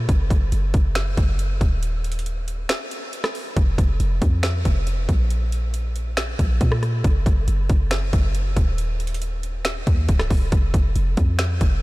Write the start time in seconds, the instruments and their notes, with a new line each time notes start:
0.09 808-style bass F#1, kick, closed hi-hat
0.30 808-style bass F#1, kick, closed hi-hat
0.52 808-style bass F#1, closed hi-hat
0.74 808-style bass F#1, kick, closed hi-hat
0.95 finger snap, snare, closed hi-hat
1.17 808-style bass F#1, kick, closed hi-hat
1.39 closed hi-hat
1.61 808-style bass D#1, kick, closed hi-hat
1.83 closed hi-hat
2.04 closed hi-hat
2.12 closed hi-hat
2.19 closed hi-hat
2.26 closed hi-hat
2.48 closed hi-hat
2.69 finger snap, snare, closed hi-hat
2.91 closed hi-hat
3.13 closed hi-hat
3.24 cross-stick, snare
3.35 open hi-hat
3.57 808-style bass F1, kick, closed hi-hat
3.78 808-style bass F1, kick, closed hi-hat
4.00 808-style bass F1, closed hi-hat
4.22 808-style bass F2, kick, closed hi-hat
4.43 finger snap, snare, closed hi-hat
4.65 808-style bass F1, kick, closed hi-hat
4.87 closed hi-hat
5.09 808-style bass A#1, kick, closed hi-hat
5.30 closed hi-hat
5.52 closed hi-hat
5.74 closed hi-hat
5.96 closed hi-hat
6.17 finger snap, snare, closed hi-hat
6.39 808-style bass A#1, kick, closed hi-hat
6.61 808-style bass A#2, kick, closed hi-hat
6.72 cross-stick
6.83 cross-stick, closed hi-hat
7.04 808-style bass F#1, kick, closed hi-hat
7.26 808-style bass F#1, kick, closed hi-hat
7.48 808-style bass F#1, closed hi-hat
7.70 808-style bass F#1, kick, closed hi-hat
7.91 finger snap, snare, closed hi-hat
8.13 808-style bass F#1, kick, closed hi-hat
8.35 closed hi-hat
8.57 808-style bass D#1, kick, closed hi-hat
8.78 closed hi-hat
9.00 closed hi-hat
9.07 closed hi-hat
9.14 closed hi-hat
9.22 closed hi-hat
9.43 closed hi-hat
9.65 finger snap, snare, closed hi-hat
9.87 808-style bass D#2, kick, closed hi-hat
10.09 808-style bass C#1, kick, closed hi-hat
10.20 cross-stick, snare
10.30 808-style bass D#1, kick, open hi-hat
10.52 808-style bass F1, kick, closed hi-hat
10.74 808-style bass F1, kick, closed hi-hat
10.96 808-style bass F1, closed hi-hat
11.17 808-style bass F2, kick, closed hi-hat
11.39 finger snap, snare, closed hi-hat
11.61 808-style bass F1, kick, closed hi-hat